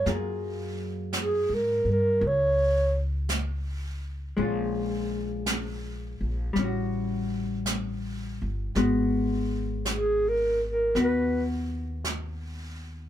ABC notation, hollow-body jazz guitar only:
X:1
M:4/4
L:1/8
Q:"Swing" 1/4=55
K:Abdor
V:1 name="Hollow-body jazz guitar"
[G,B,FA]8 | [A,DF]4 [=G,^C^F]4 | [A,CG]4 [CG]4 |]